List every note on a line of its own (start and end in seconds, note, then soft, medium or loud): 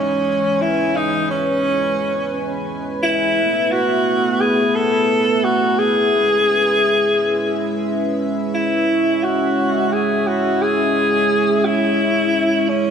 0.00 3.33 E3 medium
0.00 3.33 G#3 medium
0.00 0.63 C#4 loud
0.00 3.33 C#4 medium
0.00 0.57 C#5 medium
0.00 3.33 G#5 medium
0.61 0.97 E4 loud
0.61 8.85 B4 medium
0.96 1.30 D#4 loud
1.30 2.72 C#4 loud
3.03 3.73 E4 loud
3.37 6.10 A3 medium
3.37 6.10 B3 medium
3.37 12.90 E4 medium
3.37 12.90 E5 medium
3.72 4.42 F#4 loud
4.40 4.77 G#4 loud
4.75 5.46 A4 loud
5.44 5.80 F#4 loud
5.78 8.20 G#4 loud
6.13 8.86 G#3 medium
6.13 12.90 C#4 medium
8.54 9.25 E4 loud
8.89 12.90 G#3 medium
8.89 12.90 C#5 medium
9.23 9.94 F#4 loud
9.92 10.28 G#4 loud
10.27 10.63 F#4 loud
10.62 11.66 G#4 loud
11.65 12.70 E4 loud
12.68 12.90 C#4 loud